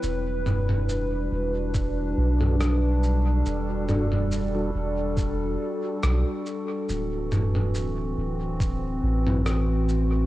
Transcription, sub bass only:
X:1
M:4/4
L:1/8
Q:"Swing 16ths" 1/4=70
K:Em
V:1 name="Sub bass" clef=bass
E,,,3 E,,,2 B,,,3 | E,,,3 E,,,2 z B,,, z | D,,,3 D,,,2 A,,,3 |]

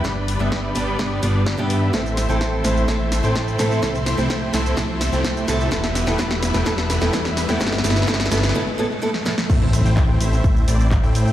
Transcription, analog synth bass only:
X:1
M:4/4
L:1/16
Q:1/4=127
K:Am
V:1 name="Analog synth bass" clef=bass
G,,,3 G,,,3 G,,,2 G,,,2 G,,,3 G,,3 | A,,,3 A,,,3 A,,,2 A,,,3 A,,3 A,,2 | C,,3 C,,3 C,,2 C,,3 C,,3 C,,2 | E,,,3 E,,, E,,,3 E,,, E,,,3 E,,, E,,3 E,, |
G,,,2 G,,,2 G,,,2 G,,,2 z8 | A,,,3 A,,,3 A,,,2 A,,,2 A,,,3 A,,3 |]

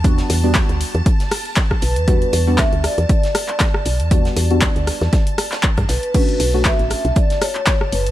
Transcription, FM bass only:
X:1
M:4/4
L:1/16
Q:"Swing 16ths" 1/4=118
K:Edor
V:1 name="FM bass" clef=bass
E,, z E,,2 z D,, z E,, z6 B,,, E,,- | E,, z E,,2 z D,, z E,, z6 B,,, E,,- | E,, z E,,2 z D,, z E,, z4 z G,, B,,, z | z2 B,,,2 z A,,, z B,,, z6 F,,, B,,, |]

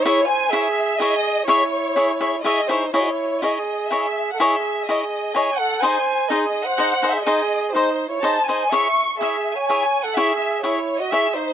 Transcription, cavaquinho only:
X:1
M:3/4
L:1/8
Q:1/4=125
K:C#m
V:1 name="Cavaquinho"
[EGce] z [EGce] z [EGce] z | [EGce] z [EGce] [EGce] [EGce] [EGce] | [EGcd] z [EGcd] z [EGcd] z | [EGcd] z [EGcd] z [EGcd] z |
[DG^Bd] z [DGBd] z [DGBd] [DGBd] | [DG^Bd] z [DGBd] z [DGBd] [DGBd] | [EGce] z [EGce] z [EGce] z | [EGce] z [EGce] z [EGce] z |]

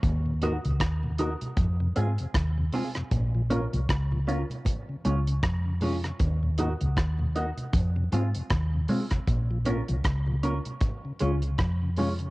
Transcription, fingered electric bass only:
X:1
M:4/4
L:1/16
Q:"Swing 16ths" 1/4=78
K:Ebdor
V:1 name="Fingered electric bass" clef=bass
E,,3 D,, E,,3 z F,,2 A,, z E,,2 z2 | B,,,3 C,, D,,3 z3 D,,2 F,,4 | E,,3 D,, E,,3 z F,,2 A,, z E,,2 z2 | B,,,3 C,, D,,3 z3 D,,2 F,,4 |]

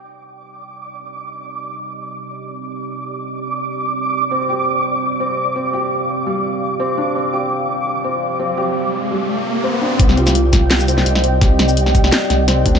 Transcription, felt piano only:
X:1
M:4/4
L:1/8
Q:1/4=169
K:Cm
V:1 name="Felt piano"
z8 | z8 | z8 | C G z3 C2 C |
G z2 G,3 C D | C G z3 C2 C | G z2 G,3 C D | C G z3 C2 C |
G z2 G,3 C D |]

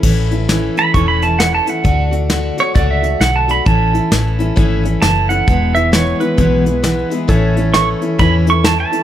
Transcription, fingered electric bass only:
X:1
M:4/4
L:1/8
Q:"Swing" 1/4=132
K:A
V:1 name="Fingered electric bass" clef=bass
A,,,4 E,,,4 | D,,4 C,,2 B,,,2 | A,,,2 A,,,2 G,,,2 F,,,2 | E,,,4 B,,,4 |
A,,,4 E,,4 |]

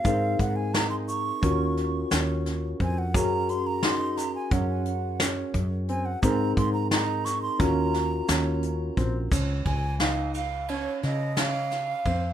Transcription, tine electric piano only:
X:1
M:9/8
L:1/8
Q:3/8=58
K:Db
V:1 name="Tine electric piano"
[CEAB]4 [DFGB]4- [DFGB] | [DGAB]8- [DGAB] | [CEAB]4 [DFGB]4- [DFGB] | z8 z |]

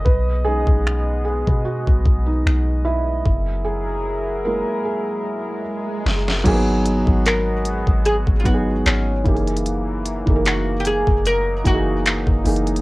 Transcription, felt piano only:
X:1
M:4/4
L:1/16
Q:"Swing 16ths" 1/4=75
K:F#mix
V:1 name="Felt piano"
B2 G4 G2 F3 D3 E2- | E2 G4 A2 G6 z2 | [F,A,B,DG]6 z4 [F,B,DFG]4 [E,A,D=G^G]2- | [E,A,D=G^G]2 z [E,A,DGA]6 z [E,A,DFG]3 z [E,A,DG]2 |]
V:2 name="Felt piano"
z2 [G,CD]6 z8 | z6 [G,A,E]6 z4 | z16 | z16 |]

